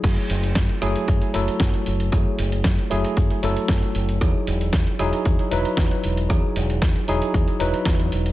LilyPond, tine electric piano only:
\new Staff \with { instrumentName = "Tine electric piano" } { \time 4/4 \key fis \dorian \tempo 4 = 115 <fis a e' gis'>4. <fis a e' gis'>4 <fis a e' a'>4. | <fis a e' gis'>4. <fis a e' gis'>4 <fis a e' a'>4. | <fis dis' e' gis'>4. <fis dis' e' gis'>4 <fis dis' e' b'>4. | <fis dis' e' gis'>4. <fis dis' e' gis'>4 <fis dis' e' b'>4. | }